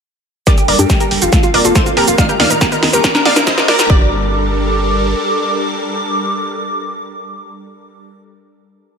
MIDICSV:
0, 0, Header, 1, 8, 480
1, 0, Start_track
1, 0, Key_signature, -2, "minor"
1, 0, Tempo, 428571
1, 525, Time_signature, 4, 2, 24, 8
1, 10058, End_track
2, 0, Start_track
2, 0, Title_t, "Digital synth lead"
2, 0, Program_c, 0, 84
2, 525, Note_on_c, 0, 86, 92
2, 618, Note_off_c, 0, 86, 0
2, 645, Note_on_c, 0, 79, 62
2, 738, Note_off_c, 0, 79, 0
2, 765, Note_on_c, 0, 86, 91
2, 858, Note_off_c, 0, 86, 0
2, 884, Note_on_c, 0, 79, 62
2, 978, Note_off_c, 0, 79, 0
2, 1004, Note_on_c, 0, 79, 62
2, 1098, Note_off_c, 0, 79, 0
2, 1124, Note_on_c, 0, 79, 62
2, 1218, Note_off_c, 0, 79, 0
2, 1365, Note_on_c, 0, 77, 63
2, 1458, Note_off_c, 0, 77, 0
2, 1485, Note_on_c, 0, 77, 63
2, 1579, Note_off_c, 0, 77, 0
2, 1605, Note_on_c, 0, 77, 65
2, 1698, Note_off_c, 0, 77, 0
2, 1725, Note_on_c, 0, 86, 87
2, 1819, Note_off_c, 0, 86, 0
2, 1845, Note_on_c, 0, 77, 65
2, 1938, Note_off_c, 0, 77, 0
2, 1966, Note_on_c, 0, 84, 92
2, 2059, Note_off_c, 0, 84, 0
2, 2086, Note_on_c, 0, 77, 61
2, 2179, Note_off_c, 0, 77, 0
2, 2205, Note_on_c, 0, 82, 87
2, 2298, Note_off_c, 0, 82, 0
2, 2325, Note_on_c, 0, 77, 65
2, 2419, Note_off_c, 0, 77, 0
2, 2444, Note_on_c, 0, 89, 91
2, 2538, Note_off_c, 0, 89, 0
2, 2564, Note_on_c, 0, 82, 65
2, 2658, Note_off_c, 0, 82, 0
2, 2685, Note_on_c, 0, 89, 97
2, 2778, Note_off_c, 0, 89, 0
2, 2806, Note_on_c, 0, 82, 67
2, 2899, Note_off_c, 0, 82, 0
2, 2926, Note_on_c, 0, 82, 63
2, 3019, Note_off_c, 0, 82, 0
2, 3045, Note_on_c, 0, 82, 63
2, 3138, Note_off_c, 0, 82, 0
2, 3285, Note_on_c, 0, 82, 63
2, 3378, Note_off_c, 0, 82, 0
2, 3405, Note_on_c, 0, 82, 67
2, 3498, Note_off_c, 0, 82, 0
2, 3525, Note_on_c, 0, 82, 68
2, 3618, Note_off_c, 0, 82, 0
2, 3645, Note_on_c, 0, 89, 90
2, 3738, Note_off_c, 0, 89, 0
2, 3766, Note_on_c, 0, 82, 65
2, 3859, Note_off_c, 0, 82, 0
2, 3886, Note_on_c, 0, 87, 92
2, 3979, Note_off_c, 0, 87, 0
2, 4005, Note_on_c, 0, 82, 67
2, 4098, Note_off_c, 0, 82, 0
2, 4125, Note_on_c, 0, 86, 92
2, 4218, Note_off_c, 0, 86, 0
2, 4245, Note_on_c, 0, 82, 67
2, 4338, Note_off_c, 0, 82, 0
2, 4366, Note_on_c, 0, 86, 101
2, 8992, Note_off_c, 0, 86, 0
2, 10058, End_track
3, 0, Start_track
3, 0, Title_t, "Synth pluck"
3, 0, Program_c, 1, 84
3, 525, Note_on_c, 1, 70, 76
3, 526, Note_on_c, 1, 74, 99
3, 618, Note_off_c, 1, 70, 0
3, 619, Note_off_c, 1, 74, 0
3, 645, Note_on_c, 1, 67, 62
3, 738, Note_off_c, 1, 67, 0
3, 764, Note_on_c, 1, 70, 77
3, 764, Note_on_c, 1, 74, 90
3, 858, Note_off_c, 1, 70, 0
3, 858, Note_off_c, 1, 74, 0
3, 885, Note_on_c, 1, 67, 65
3, 978, Note_off_c, 1, 67, 0
3, 1005, Note_on_c, 1, 67, 62
3, 1098, Note_off_c, 1, 67, 0
3, 1124, Note_on_c, 1, 67, 61
3, 1218, Note_off_c, 1, 67, 0
3, 1364, Note_on_c, 1, 65, 64
3, 1458, Note_off_c, 1, 65, 0
3, 1484, Note_on_c, 1, 65, 67
3, 1578, Note_off_c, 1, 65, 0
3, 1605, Note_on_c, 1, 65, 65
3, 1698, Note_off_c, 1, 65, 0
3, 1725, Note_on_c, 1, 74, 91
3, 1726, Note_on_c, 1, 70, 76
3, 1818, Note_off_c, 1, 74, 0
3, 1819, Note_off_c, 1, 70, 0
3, 1844, Note_on_c, 1, 65, 66
3, 1938, Note_off_c, 1, 65, 0
3, 1964, Note_on_c, 1, 69, 78
3, 1965, Note_on_c, 1, 72, 87
3, 2058, Note_off_c, 1, 69, 0
3, 2058, Note_off_c, 1, 72, 0
3, 2085, Note_on_c, 1, 65, 66
3, 2178, Note_off_c, 1, 65, 0
3, 2205, Note_on_c, 1, 67, 76
3, 2205, Note_on_c, 1, 70, 88
3, 2298, Note_off_c, 1, 67, 0
3, 2298, Note_off_c, 1, 70, 0
3, 2325, Note_on_c, 1, 65, 64
3, 2418, Note_off_c, 1, 65, 0
3, 2445, Note_on_c, 1, 74, 79
3, 2445, Note_on_c, 1, 77, 100
3, 2538, Note_off_c, 1, 74, 0
3, 2538, Note_off_c, 1, 77, 0
3, 2565, Note_on_c, 1, 70, 67
3, 2659, Note_off_c, 1, 70, 0
3, 2685, Note_on_c, 1, 74, 75
3, 2685, Note_on_c, 1, 77, 95
3, 2778, Note_off_c, 1, 74, 0
3, 2778, Note_off_c, 1, 77, 0
3, 2805, Note_on_c, 1, 70, 67
3, 2898, Note_off_c, 1, 70, 0
3, 2925, Note_on_c, 1, 70, 64
3, 3018, Note_off_c, 1, 70, 0
3, 3046, Note_on_c, 1, 70, 64
3, 3139, Note_off_c, 1, 70, 0
3, 3285, Note_on_c, 1, 70, 68
3, 3378, Note_off_c, 1, 70, 0
3, 3405, Note_on_c, 1, 70, 66
3, 3498, Note_off_c, 1, 70, 0
3, 3524, Note_on_c, 1, 70, 65
3, 3618, Note_off_c, 1, 70, 0
3, 3644, Note_on_c, 1, 74, 76
3, 3645, Note_on_c, 1, 77, 91
3, 3738, Note_off_c, 1, 74, 0
3, 3738, Note_off_c, 1, 77, 0
3, 3764, Note_on_c, 1, 70, 67
3, 3858, Note_off_c, 1, 70, 0
3, 3885, Note_on_c, 1, 72, 81
3, 3885, Note_on_c, 1, 75, 90
3, 3978, Note_off_c, 1, 72, 0
3, 3978, Note_off_c, 1, 75, 0
3, 4005, Note_on_c, 1, 70, 62
3, 4098, Note_off_c, 1, 70, 0
3, 4125, Note_on_c, 1, 74, 90
3, 4126, Note_on_c, 1, 70, 79
3, 4218, Note_off_c, 1, 74, 0
3, 4219, Note_off_c, 1, 70, 0
3, 4246, Note_on_c, 1, 70, 64
3, 4339, Note_off_c, 1, 70, 0
3, 4365, Note_on_c, 1, 74, 97
3, 8991, Note_off_c, 1, 74, 0
3, 10058, End_track
4, 0, Start_track
4, 0, Title_t, "Synth arpeggio sound"
4, 0, Program_c, 2, 84
4, 525, Note_on_c, 2, 67, 85
4, 631, Note_off_c, 2, 67, 0
4, 645, Note_on_c, 2, 67, 78
4, 721, Note_off_c, 2, 67, 0
4, 765, Note_on_c, 2, 70, 100
4, 841, Note_off_c, 2, 70, 0
4, 885, Note_on_c, 2, 67, 73
4, 991, Note_off_c, 2, 67, 0
4, 1005, Note_on_c, 2, 67, 80
4, 1081, Note_off_c, 2, 67, 0
4, 1124, Note_on_c, 2, 70, 105
4, 1201, Note_off_c, 2, 70, 0
4, 1245, Note_on_c, 2, 67, 75
4, 1352, Note_off_c, 2, 67, 0
4, 1365, Note_on_c, 2, 67, 74
4, 1441, Note_off_c, 2, 67, 0
4, 1485, Note_on_c, 2, 69, 105
4, 1561, Note_off_c, 2, 69, 0
4, 1605, Note_on_c, 2, 65, 76
4, 1712, Note_off_c, 2, 65, 0
4, 1725, Note_on_c, 2, 65, 78
4, 1801, Note_off_c, 2, 65, 0
4, 1845, Note_on_c, 2, 69, 97
4, 1921, Note_off_c, 2, 69, 0
4, 1966, Note_on_c, 2, 65, 83
4, 2072, Note_off_c, 2, 65, 0
4, 2085, Note_on_c, 2, 65, 76
4, 2161, Note_off_c, 2, 65, 0
4, 2205, Note_on_c, 2, 69, 107
4, 2281, Note_off_c, 2, 69, 0
4, 2325, Note_on_c, 2, 65, 75
4, 2439, Note_off_c, 2, 65, 0
4, 2445, Note_on_c, 2, 63, 86
4, 2521, Note_off_c, 2, 63, 0
4, 2565, Note_on_c, 2, 67, 107
4, 2642, Note_off_c, 2, 67, 0
4, 2685, Note_on_c, 2, 63, 79
4, 2793, Note_off_c, 2, 63, 0
4, 2806, Note_on_c, 2, 63, 76
4, 2882, Note_off_c, 2, 63, 0
4, 2926, Note_on_c, 2, 67, 97
4, 3002, Note_off_c, 2, 67, 0
4, 3046, Note_on_c, 2, 63, 79
4, 3153, Note_off_c, 2, 63, 0
4, 3166, Note_on_c, 2, 63, 78
4, 3242, Note_off_c, 2, 63, 0
4, 3286, Note_on_c, 2, 67, 101
4, 3362, Note_off_c, 2, 67, 0
4, 3406, Note_on_c, 2, 70, 85
4, 3513, Note_off_c, 2, 70, 0
4, 3526, Note_on_c, 2, 70, 78
4, 3602, Note_off_c, 2, 70, 0
4, 3646, Note_on_c, 2, 74, 104
4, 3722, Note_off_c, 2, 74, 0
4, 3766, Note_on_c, 2, 70, 74
4, 3873, Note_off_c, 2, 70, 0
4, 3886, Note_on_c, 2, 70, 84
4, 3962, Note_off_c, 2, 70, 0
4, 4006, Note_on_c, 2, 74, 97
4, 4082, Note_off_c, 2, 74, 0
4, 4126, Note_on_c, 2, 70, 82
4, 4233, Note_off_c, 2, 70, 0
4, 4246, Note_on_c, 2, 70, 77
4, 4322, Note_off_c, 2, 70, 0
4, 4366, Note_on_c, 2, 67, 99
4, 4589, Note_off_c, 2, 67, 0
4, 10058, End_track
5, 0, Start_track
5, 0, Title_t, "Supersaw synth"
5, 0, Program_c, 3, 81
5, 525, Note_on_c, 3, 55, 75
5, 525, Note_on_c, 3, 62, 70
5, 525, Note_on_c, 3, 69, 69
5, 525, Note_on_c, 3, 70, 87
5, 1475, Note_off_c, 3, 55, 0
5, 1475, Note_off_c, 3, 62, 0
5, 1475, Note_off_c, 3, 70, 0
5, 1476, Note_off_c, 3, 69, 0
5, 1485, Note_on_c, 3, 58, 77
5, 1485, Note_on_c, 3, 60, 71
5, 1485, Note_on_c, 3, 65, 89
5, 2436, Note_off_c, 3, 58, 0
5, 2436, Note_off_c, 3, 60, 0
5, 2445, Note_on_c, 3, 63, 69
5, 2446, Note_on_c, 3, 51, 76
5, 2446, Note_on_c, 3, 70, 84
5, 3386, Note_off_c, 3, 65, 0
5, 3396, Note_off_c, 3, 51, 0
5, 3396, Note_off_c, 3, 63, 0
5, 3396, Note_off_c, 3, 70, 0
5, 3404, Note_on_c, 3, 62, 84
5, 3405, Note_on_c, 3, 58, 75
5, 3405, Note_on_c, 3, 60, 71
5, 4351, Note_off_c, 3, 62, 0
5, 4355, Note_off_c, 3, 60, 0
5, 4356, Note_off_c, 3, 58, 0
5, 4365, Note_on_c, 3, 55, 86
5, 4365, Note_on_c, 3, 62, 74
5, 4365, Note_on_c, 3, 69, 74
5, 4365, Note_on_c, 3, 70, 93
5, 8991, Note_off_c, 3, 55, 0
5, 8991, Note_off_c, 3, 62, 0
5, 8991, Note_off_c, 3, 69, 0
5, 8991, Note_off_c, 3, 70, 0
5, 10058, End_track
6, 0, Start_track
6, 0, Title_t, "Analog synth bass"
6, 0, Program_c, 4, 38
6, 765, Note_on_c, 4, 31, 93
6, 840, Note_off_c, 4, 31, 0
6, 885, Note_on_c, 4, 43, 83
6, 960, Note_off_c, 4, 43, 0
6, 1245, Note_on_c, 4, 31, 93
6, 1320, Note_off_c, 4, 31, 0
6, 1365, Note_on_c, 4, 31, 83
6, 1440, Note_off_c, 4, 31, 0
6, 1725, Note_on_c, 4, 29, 91
6, 1800, Note_off_c, 4, 29, 0
6, 1845, Note_on_c, 4, 29, 81
6, 1920, Note_off_c, 4, 29, 0
6, 2086, Note_on_c, 4, 29, 75
6, 2161, Note_off_c, 4, 29, 0
6, 2205, Note_on_c, 4, 29, 91
6, 2280, Note_off_c, 4, 29, 0
6, 2325, Note_on_c, 4, 29, 80
6, 2400, Note_off_c, 4, 29, 0
6, 2685, Note_on_c, 4, 39, 93
6, 2760, Note_off_c, 4, 39, 0
6, 2805, Note_on_c, 4, 27, 84
6, 2880, Note_off_c, 4, 27, 0
6, 3165, Note_on_c, 4, 39, 91
6, 3240, Note_off_c, 4, 39, 0
6, 3285, Note_on_c, 4, 39, 88
6, 3360, Note_off_c, 4, 39, 0
6, 3645, Note_on_c, 4, 34, 91
6, 3720, Note_off_c, 4, 34, 0
6, 3765, Note_on_c, 4, 34, 83
6, 3840, Note_off_c, 4, 34, 0
6, 4006, Note_on_c, 4, 34, 78
6, 4081, Note_off_c, 4, 34, 0
6, 4125, Note_on_c, 4, 34, 94
6, 4200, Note_off_c, 4, 34, 0
6, 4245, Note_on_c, 4, 34, 81
6, 4320, Note_off_c, 4, 34, 0
6, 4365, Note_on_c, 4, 31, 94
6, 5761, Note_off_c, 4, 31, 0
6, 10058, End_track
7, 0, Start_track
7, 0, Title_t, "Riser"
7, 0, Program_c, 5, 103
7, 525, Note_on_c, 5, 60, 76
7, 4365, Note_off_c, 5, 60, 0
7, 10058, End_track
8, 0, Start_track
8, 0, Title_t, "Drums"
8, 524, Note_on_c, 9, 38, 45
8, 524, Note_on_c, 9, 42, 89
8, 524, Note_on_c, 9, 82, 47
8, 525, Note_on_c, 9, 36, 112
8, 636, Note_off_c, 9, 38, 0
8, 636, Note_off_c, 9, 42, 0
8, 636, Note_off_c, 9, 82, 0
8, 637, Note_off_c, 9, 36, 0
8, 645, Note_on_c, 9, 42, 40
8, 645, Note_on_c, 9, 82, 30
8, 757, Note_off_c, 9, 42, 0
8, 757, Note_off_c, 9, 82, 0
8, 764, Note_on_c, 9, 46, 105
8, 876, Note_off_c, 9, 46, 0
8, 885, Note_on_c, 9, 42, 39
8, 885, Note_on_c, 9, 63, 58
8, 885, Note_on_c, 9, 82, 60
8, 997, Note_off_c, 9, 42, 0
8, 997, Note_off_c, 9, 63, 0
8, 997, Note_off_c, 9, 82, 0
8, 1005, Note_on_c, 9, 36, 116
8, 1005, Note_on_c, 9, 38, 53
8, 1005, Note_on_c, 9, 42, 94
8, 1005, Note_on_c, 9, 82, 48
8, 1117, Note_off_c, 9, 36, 0
8, 1117, Note_off_c, 9, 38, 0
8, 1117, Note_off_c, 9, 42, 0
8, 1117, Note_off_c, 9, 82, 0
8, 1124, Note_on_c, 9, 42, 41
8, 1124, Note_on_c, 9, 82, 29
8, 1236, Note_off_c, 9, 42, 0
8, 1236, Note_off_c, 9, 82, 0
8, 1245, Note_on_c, 9, 46, 99
8, 1357, Note_off_c, 9, 46, 0
8, 1365, Note_on_c, 9, 42, 42
8, 1365, Note_on_c, 9, 82, 59
8, 1477, Note_off_c, 9, 42, 0
8, 1477, Note_off_c, 9, 82, 0
8, 1485, Note_on_c, 9, 36, 117
8, 1485, Note_on_c, 9, 38, 57
8, 1485, Note_on_c, 9, 42, 91
8, 1485, Note_on_c, 9, 82, 49
8, 1597, Note_off_c, 9, 36, 0
8, 1597, Note_off_c, 9, 38, 0
8, 1597, Note_off_c, 9, 42, 0
8, 1597, Note_off_c, 9, 82, 0
8, 1605, Note_on_c, 9, 42, 40
8, 1605, Note_on_c, 9, 82, 27
8, 1717, Note_off_c, 9, 42, 0
8, 1717, Note_off_c, 9, 82, 0
8, 1725, Note_on_c, 9, 46, 101
8, 1837, Note_off_c, 9, 46, 0
8, 1846, Note_on_c, 9, 42, 41
8, 1846, Note_on_c, 9, 82, 59
8, 1958, Note_off_c, 9, 42, 0
8, 1958, Note_off_c, 9, 82, 0
8, 1965, Note_on_c, 9, 36, 116
8, 1965, Note_on_c, 9, 38, 67
8, 1965, Note_on_c, 9, 42, 96
8, 1965, Note_on_c, 9, 82, 51
8, 2077, Note_off_c, 9, 36, 0
8, 2077, Note_off_c, 9, 38, 0
8, 2077, Note_off_c, 9, 42, 0
8, 2077, Note_off_c, 9, 82, 0
8, 2085, Note_on_c, 9, 42, 39
8, 2085, Note_on_c, 9, 82, 30
8, 2197, Note_off_c, 9, 42, 0
8, 2197, Note_off_c, 9, 82, 0
8, 2205, Note_on_c, 9, 46, 97
8, 2317, Note_off_c, 9, 46, 0
8, 2326, Note_on_c, 9, 42, 39
8, 2326, Note_on_c, 9, 82, 61
8, 2438, Note_off_c, 9, 42, 0
8, 2438, Note_off_c, 9, 82, 0
8, 2445, Note_on_c, 9, 36, 121
8, 2445, Note_on_c, 9, 38, 72
8, 2445, Note_on_c, 9, 42, 95
8, 2445, Note_on_c, 9, 82, 49
8, 2557, Note_off_c, 9, 36, 0
8, 2557, Note_off_c, 9, 38, 0
8, 2557, Note_off_c, 9, 42, 0
8, 2557, Note_off_c, 9, 82, 0
8, 2566, Note_on_c, 9, 42, 39
8, 2566, Note_on_c, 9, 82, 29
8, 2678, Note_off_c, 9, 42, 0
8, 2678, Note_off_c, 9, 82, 0
8, 2685, Note_on_c, 9, 38, 80
8, 2685, Note_on_c, 9, 46, 116
8, 2797, Note_off_c, 9, 38, 0
8, 2797, Note_off_c, 9, 46, 0
8, 2806, Note_on_c, 9, 42, 42
8, 2806, Note_on_c, 9, 82, 61
8, 2918, Note_off_c, 9, 42, 0
8, 2918, Note_off_c, 9, 82, 0
8, 2925, Note_on_c, 9, 36, 125
8, 2926, Note_on_c, 9, 38, 85
8, 2926, Note_on_c, 9, 42, 94
8, 2926, Note_on_c, 9, 82, 50
8, 3037, Note_off_c, 9, 36, 0
8, 3038, Note_off_c, 9, 38, 0
8, 3038, Note_off_c, 9, 42, 0
8, 3038, Note_off_c, 9, 82, 0
8, 3046, Note_on_c, 9, 42, 40
8, 3046, Note_on_c, 9, 82, 31
8, 3158, Note_off_c, 9, 42, 0
8, 3158, Note_off_c, 9, 82, 0
8, 3165, Note_on_c, 9, 38, 88
8, 3165, Note_on_c, 9, 46, 109
8, 3277, Note_off_c, 9, 38, 0
8, 3277, Note_off_c, 9, 46, 0
8, 3285, Note_on_c, 9, 42, 41
8, 3285, Note_on_c, 9, 82, 61
8, 3397, Note_off_c, 9, 42, 0
8, 3397, Note_off_c, 9, 82, 0
8, 3405, Note_on_c, 9, 36, 126
8, 3405, Note_on_c, 9, 38, 90
8, 3405, Note_on_c, 9, 42, 92
8, 3405, Note_on_c, 9, 82, 50
8, 3517, Note_off_c, 9, 36, 0
8, 3517, Note_off_c, 9, 38, 0
8, 3517, Note_off_c, 9, 42, 0
8, 3517, Note_off_c, 9, 82, 0
8, 3526, Note_on_c, 9, 38, 81
8, 3526, Note_on_c, 9, 42, 37
8, 3526, Note_on_c, 9, 63, 75
8, 3526, Note_on_c, 9, 82, 29
8, 3638, Note_off_c, 9, 38, 0
8, 3638, Note_off_c, 9, 42, 0
8, 3638, Note_off_c, 9, 63, 0
8, 3638, Note_off_c, 9, 82, 0
8, 3645, Note_on_c, 9, 38, 98
8, 3645, Note_on_c, 9, 46, 107
8, 3757, Note_off_c, 9, 38, 0
8, 3757, Note_off_c, 9, 46, 0
8, 3765, Note_on_c, 9, 38, 90
8, 3765, Note_on_c, 9, 63, 62
8, 3765, Note_on_c, 9, 82, 63
8, 3877, Note_off_c, 9, 38, 0
8, 3877, Note_off_c, 9, 63, 0
8, 3877, Note_off_c, 9, 82, 0
8, 3885, Note_on_c, 9, 36, 125
8, 3886, Note_on_c, 9, 38, 103
8, 3886, Note_on_c, 9, 42, 95
8, 3886, Note_on_c, 9, 82, 52
8, 3997, Note_off_c, 9, 36, 0
8, 3998, Note_off_c, 9, 38, 0
8, 3998, Note_off_c, 9, 42, 0
8, 3998, Note_off_c, 9, 82, 0
8, 4005, Note_on_c, 9, 38, 90
8, 4005, Note_on_c, 9, 42, 42
8, 4005, Note_on_c, 9, 82, 31
8, 4117, Note_off_c, 9, 38, 0
8, 4117, Note_off_c, 9, 42, 0
8, 4117, Note_off_c, 9, 82, 0
8, 4125, Note_on_c, 9, 38, 104
8, 4125, Note_on_c, 9, 46, 106
8, 4237, Note_off_c, 9, 38, 0
8, 4237, Note_off_c, 9, 46, 0
8, 4246, Note_on_c, 9, 38, 94
8, 4246, Note_on_c, 9, 42, 41
8, 4246, Note_on_c, 9, 82, 60
8, 4358, Note_off_c, 9, 38, 0
8, 4358, Note_off_c, 9, 42, 0
8, 4358, Note_off_c, 9, 82, 0
8, 4365, Note_on_c, 9, 36, 104
8, 4477, Note_off_c, 9, 36, 0
8, 10058, End_track
0, 0, End_of_file